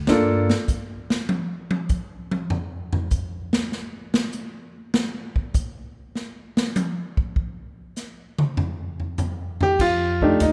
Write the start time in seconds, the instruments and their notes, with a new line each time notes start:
0.07 upright bass G2, grand piano A#3 D4 F4 A4, snare
0.50 snare
0.68 kick, hi-hat pedal
1.10 snare
1.29 high tom
1.71 high tom
1.89 kick, hi-hat pedal
2.31 high tom
2.50 floor tom
2.93 floor tom
3.11 kick, hi-hat pedal
3.53 snare
3.72 snare
4.14 snare
4.32 hi-hat pedal
4.94 snare
5.36 kick
5.54 kick, hi-hat pedal
6.15 snare
6.57 snare
6.76 hi-hat pedal, high tom
7.17 kick
7.36 kick
7.96 snare, hi-hat pedal
8.38 mid tom
8.57 floor tom
9.00 floor tom
9.18 floor tom, hi-hat pedal
9.61 grand piano G4, floor tom
9.79 upright bass F2, grand piano F4, kick, crash
10.21 grand piano A3 D4 D#4 G4, kick
10.40 upright bass D#2, grand piano D#4, kick, hi-hat pedal, ride